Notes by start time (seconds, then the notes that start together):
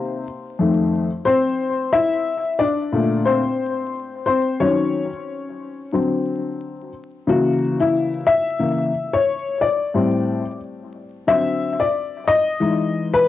Already playing: C3 D#3 A#3 C4 C5
0.59 F2 D#3 A3
1.25 C4 C5
1.93 E4 E5
2.59 D4 D5
2.92 A#2 D3 A3
3.25 C4 C5
4.26 C4 C5
4.60 D#3 F#3 C#4 C#5
5.93 D3 F#3 C4
7.27 C#3 E3 A#3 F#4
7.80 E4
8.27 E5
8.59 C#3 E3 A#3
9.14 C#5
9.61 D5
9.94 A2 G3 C4
11.27 D3 F#3 C4 E5
11.80 D5
12.28 D#5
12.60 E3 G#3 D#4
13.14 B4